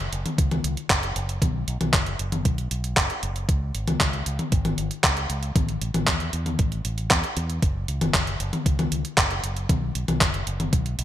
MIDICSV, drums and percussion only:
0, 0, Header, 1, 2, 480
1, 0, Start_track
1, 0, Key_signature, 3, "minor"
1, 0, Tempo, 517241
1, 1316, Time_signature, 4, 2, 24, 8
1, 10247, End_track
2, 0, Start_track
2, 0, Title_t, "Drums"
2, 117, Note_on_c, 9, 42, 82
2, 209, Note_off_c, 9, 42, 0
2, 237, Note_on_c, 9, 42, 53
2, 237, Note_on_c, 9, 48, 55
2, 330, Note_off_c, 9, 42, 0
2, 330, Note_off_c, 9, 48, 0
2, 356, Note_on_c, 9, 36, 117
2, 357, Note_on_c, 9, 42, 77
2, 448, Note_off_c, 9, 36, 0
2, 450, Note_off_c, 9, 42, 0
2, 477, Note_on_c, 9, 42, 37
2, 477, Note_on_c, 9, 48, 72
2, 570, Note_off_c, 9, 42, 0
2, 570, Note_off_c, 9, 48, 0
2, 597, Note_on_c, 9, 42, 83
2, 690, Note_off_c, 9, 42, 0
2, 717, Note_on_c, 9, 42, 54
2, 810, Note_off_c, 9, 42, 0
2, 835, Note_on_c, 9, 36, 113
2, 836, Note_on_c, 9, 39, 109
2, 836, Note_on_c, 9, 42, 75
2, 928, Note_off_c, 9, 36, 0
2, 929, Note_off_c, 9, 39, 0
2, 929, Note_off_c, 9, 42, 0
2, 957, Note_on_c, 9, 42, 38
2, 1050, Note_off_c, 9, 42, 0
2, 1077, Note_on_c, 9, 42, 82
2, 1169, Note_off_c, 9, 42, 0
2, 1198, Note_on_c, 9, 42, 55
2, 1291, Note_off_c, 9, 42, 0
2, 1315, Note_on_c, 9, 36, 121
2, 1317, Note_on_c, 9, 42, 77
2, 1317, Note_on_c, 9, 48, 56
2, 1408, Note_off_c, 9, 36, 0
2, 1410, Note_off_c, 9, 42, 0
2, 1410, Note_off_c, 9, 48, 0
2, 1557, Note_on_c, 9, 42, 78
2, 1650, Note_off_c, 9, 42, 0
2, 1677, Note_on_c, 9, 42, 53
2, 1677, Note_on_c, 9, 48, 74
2, 1770, Note_off_c, 9, 42, 0
2, 1770, Note_off_c, 9, 48, 0
2, 1795, Note_on_c, 9, 36, 120
2, 1795, Note_on_c, 9, 39, 118
2, 1795, Note_on_c, 9, 42, 80
2, 1888, Note_off_c, 9, 36, 0
2, 1888, Note_off_c, 9, 39, 0
2, 1888, Note_off_c, 9, 42, 0
2, 1916, Note_on_c, 9, 42, 35
2, 2009, Note_off_c, 9, 42, 0
2, 2036, Note_on_c, 9, 42, 77
2, 2128, Note_off_c, 9, 42, 0
2, 2155, Note_on_c, 9, 42, 52
2, 2155, Note_on_c, 9, 48, 59
2, 2248, Note_off_c, 9, 42, 0
2, 2248, Note_off_c, 9, 48, 0
2, 2275, Note_on_c, 9, 42, 76
2, 2276, Note_on_c, 9, 36, 120
2, 2368, Note_off_c, 9, 36, 0
2, 2368, Note_off_c, 9, 42, 0
2, 2396, Note_on_c, 9, 42, 38
2, 2489, Note_off_c, 9, 42, 0
2, 2516, Note_on_c, 9, 42, 80
2, 2609, Note_off_c, 9, 42, 0
2, 2636, Note_on_c, 9, 42, 53
2, 2729, Note_off_c, 9, 42, 0
2, 2755, Note_on_c, 9, 36, 120
2, 2756, Note_on_c, 9, 39, 115
2, 2756, Note_on_c, 9, 42, 76
2, 2848, Note_off_c, 9, 36, 0
2, 2848, Note_off_c, 9, 39, 0
2, 2848, Note_off_c, 9, 42, 0
2, 2876, Note_on_c, 9, 42, 36
2, 2969, Note_off_c, 9, 42, 0
2, 2996, Note_on_c, 9, 42, 75
2, 3089, Note_off_c, 9, 42, 0
2, 3116, Note_on_c, 9, 42, 51
2, 3209, Note_off_c, 9, 42, 0
2, 3236, Note_on_c, 9, 36, 127
2, 3237, Note_on_c, 9, 42, 77
2, 3328, Note_off_c, 9, 36, 0
2, 3329, Note_off_c, 9, 42, 0
2, 3476, Note_on_c, 9, 42, 72
2, 3569, Note_off_c, 9, 42, 0
2, 3596, Note_on_c, 9, 42, 51
2, 3596, Note_on_c, 9, 48, 79
2, 3689, Note_off_c, 9, 42, 0
2, 3689, Note_off_c, 9, 48, 0
2, 3716, Note_on_c, 9, 36, 117
2, 3717, Note_on_c, 9, 39, 119
2, 3717, Note_on_c, 9, 42, 77
2, 3809, Note_off_c, 9, 36, 0
2, 3810, Note_off_c, 9, 39, 0
2, 3810, Note_off_c, 9, 42, 0
2, 3836, Note_on_c, 9, 42, 33
2, 3929, Note_off_c, 9, 42, 0
2, 3955, Note_on_c, 9, 42, 76
2, 4048, Note_off_c, 9, 42, 0
2, 4075, Note_on_c, 9, 42, 50
2, 4075, Note_on_c, 9, 48, 59
2, 4168, Note_off_c, 9, 42, 0
2, 4168, Note_off_c, 9, 48, 0
2, 4195, Note_on_c, 9, 42, 73
2, 4196, Note_on_c, 9, 36, 123
2, 4288, Note_off_c, 9, 42, 0
2, 4289, Note_off_c, 9, 36, 0
2, 4315, Note_on_c, 9, 42, 36
2, 4315, Note_on_c, 9, 48, 75
2, 4407, Note_off_c, 9, 42, 0
2, 4407, Note_off_c, 9, 48, 0
2, 4435, Note_on_c, 9, 42, 77
2, 4528, Note_off_c, 9, 42, 0
2, 4555, Note_on_c, 9, 42, 50
2, 4648, Note_off_c, 9, 42, 0
2, 4676, Note_on_c, 9, 36, 120
2, 4676, Note_on_c, 9, 39, 118
2, 4676, Note_on_c, 9, 42, 71
2, 4768, Note_off_c, 9, 36, 0
2, 4768, Note_off_c, 9, 39, 0
2, 4768, Note_off_c, 9, 42, 0
2, 4796, Note_on_c, 9, 42, 36
2, 4889, Note_off_c, 9, 42, 0
2, 4916, Note_on_c, 9, 42, 75
2, 5008, Note_off_c, 9, 42, 0
2, 5036, Note_on_c, 9, 42, 50
2, 5128, Note_off_c, 9, 42, 0
2, 5156, Note_on_c, 9, 36, 126
2, 5156, Note_on_c, 9, 42, 72
2, 5156, Note_on_c, 9, 48, 60
2, 5248, Note_off_c, 9, 36, 0
2, 5249, Note_off_c, 9, 42, 0
2, 5249, Note_off_c, 9, 48, 0
2, 5276, Note_on_c, 9, 42, 35
2, 5369, Note_off_c, 9, 42, 0
2, 5396, Note_on_c, 9, 42, 69
2, 5489, Note_off_c, 9, 42, 0
2, 5516, Note_on_c, 9, 42, 50
2, 5516, Note_on_c, 9, 48, 80
2, 5608, Note_off_c, 9, 42, 0
2, 5608, Note_off_c, 9, 48, 0
2, 5635, Note_on_c, 9, 39, 125
2, 5635, Note_on_c, 9, 42, 73
2, 5636, Note_on_c, 9, 36, 115
2, 5728, Note_off_c, 9, 39, 0
2, 5728, Note_off_c, 9, 42, 0
2, 5729, Note_off_c, 9, 36, 0
2, 5755, Note_on_c, 9, 42, 32
2, 5848, Note_off_c, 9, 42, 0
2, 5875, Note_on_c, 9, 42, 75
2, 5968, Note_off_c, 9, 42, 0
2, 5995, Note_on_c, 9, 42, 49
2, 5995, Note_on_c, 9, 48, 61
2, 6088, Note_off_c, 9, 42, 0
2, 6088, Note_off_c, 9, 48, 0
2, 6114, Note_on_c, 9, 42, 70
2, 6116, Note_on_c, 9, 36, 121
2, 6207, Note_off_c, 9, 42, 0
2, 6209, Note_off_c, 9, 36, 0
2, 6235, Note_on_c, 9, 42, 34
2, 6328, Note_off_c, 9, 42, 0
2, 6355, Note_on_c, 9, 42, 76
2, 6448, Note_off_c, 9, 42, 0
2, 6475, Note_on_c, 9, 42, 50
2, 6568, Note_off_c, 9, 42, 0
2, 6595, Note_on_c, 9, 39, 110
2, 6595, Note_on_c, 9, 42, 72
2, 6596, Note_on_c, 9, 36, 124
2, 6687, Note_off_c, 9, 39, 0
2, 6687, Note_off_c, 9, 42, 0
2, 6688, Note_off_c, 9, 36, 0
2, 6715, Note_on_c, 9, 42, 35
2, 6808, Note_off_c, 9, 42, 0
2, 6836, Note_on_c, 9, 42, 72
2, 6928, Note_off_c, 9, 42, 0
2, 6956, Note_on_c, 9, 42, 46
2, 7049, Note_off_c, 9, 42, 0
2, 7076, Note_on_c, 9, 36, 119
2, 7076, Note_on_c, 9, 42, 73
2, 7168, Note_off_c, 9, 36, 0
2, 7169, Note_off_c, 9, 42, 0
2, 7316, Note_on_c, 9, 42, 71
2, 7409, Note_off_c, 9, 42, 0
2, 7436, Note_on_c, 9, 42, 51
2, 7436, Note_on_c, 9, 48, 85
2, 7529, Note_off_c, 9, 42, 0
2, 7529, Note_off_c, 9, 48, 0
2, 7556, Note_on_c, 9, 36, 108
2, 7556, Note_on_c, 9, 39, 120
2, 7556, Note_on_c, 9, 42, 76
2, 7648, Note_off_c, 9, 36, 0
2, 7648, Note_off_c, 9, 39, 0
2, 7648, Note_off_c, 9, 42, 0
2, 7677, Note_on_c, 9, 42, 34
2, 7770, Note_off_c, 9, 42, 0
2, 7796, Note_on_c, 9, 42, 77
2, 7889, Note_off_c, 9, 42, 0
2, 7916, Note_on_c, 9, 42, 50
2, 7916, Note_on_c, 9, 48, 62
2, 8009, Note_off_c, 9, 42, 0
2, 8009, Note_off_c, 9, 48, 0
2, 8036, Note_on_c, 9, 36, 112
2, 8036, Note_on_c, 9, 42, 75
2, 8128, Note_off_c, 9, 36, 0
2, 8129, Note_off_c, 9, 42, 0
2, 8157, Note_on_c, 9, 42, 35
2, 8157, Note_on_c, 9, 48, 80
2, 8250, Note_off_c, 9, 42, 0
2, 8250, Note_off_c, 9, 48, 0
2, 8277, Note_on_c, 9, 42, 76
2, 8369, Note_off_c, 9, 42, 0
2, 8397, Note_on_c, 9, 42, 50
2, 8489, Note_off_c, 9, 42, 0
2, 8516, Note_on_c, 9, 36, 119
2, 8516, Note_on_c, 9, 39, 116
2, 8516, Note_on_c, 9, 42, 68
2, 8609, Note_off_c, 9, 36, 0
2, 8609, Note_off_c, 9, 39, 0
2, 8609, Note_off_c, 9, 42, 0
2, 8636, Note_on_c, 9, 42, 33
2, 8729, Note_off_c, 9, 42, 0
2, 8756, Note_on_c, 9, 42, 76
2, 8849, Note_off_c, 9, 42, 0
2, 8877, Note_on_c, 9, 42, 46
2, 8969, Note_off_c, 9, 42, 0
2, 8996, Note_on_c, 9, 36, 111
2, 8996, Note_on_c, 9, 42, 76
2, 8996, Note_on_c, 9, 48, 61
2, 9088, Note_off_c, 9, 36, 0
2, 9089, Note_off_c, 9, 42, 0
2, 9089, Note_off_c, 9, 48, 0
2, 9236, Note_on_c, 9, 42, 75
2, 9328, Note_off_c, 9, 42, 0
2, 9357, Note_on_c, 9, 42, 53
2, 9357, Note_on_c, 9, 48, 82
2, 9450, Note_off_c, 9, 42, 0
2, 9450, Note_off_c, 9, 48, 0
2, 9476, Note_on_c, 9, 36, 106
2, 9476, Note_on_c, 9, 39, 113
2, 9476, Note_on_c, 9, 42, 78
2, 9568, Note_off_c, 9, 36, 0
2, 9568, Note_off_c, 9, 39, 0
2, 9568, Note_off_c, 9, 42, 0
2, 9596, Note_on_c, 9, 42, 36
2, 9689, Note_off_c, 9, 42, 0
2, 9716, Note_on_c, 9, 42, 77
2, 9809, Note_off_c, 9, 42, 0
2, 9836, Note_on_c, 9, 42, 49
2, 9836, Note_on_c, 9, 48, 63
2, 9928, Note_off_c, 9, 42, 0
2, 9928, Note_off_c, 9, 48, 0
2, 9955, Note_on_c, 9, 36, 114
2, 9956, Note_on_c, 9, 42, 73
2, 10048, Note_off_c, 9, 36, 0
2, 10049, Note_off_c, 9, 42, 0
2, 10076, Note_on_c, 9, 42, 36
2, 10169, Note_off_c, 9, 42, 0
2, 10196, Note_on_c, 9, 42, 79
2, 10247, Note_off_c, 9, 42, 0
2, 10247, End_track
0, 0, End_of_file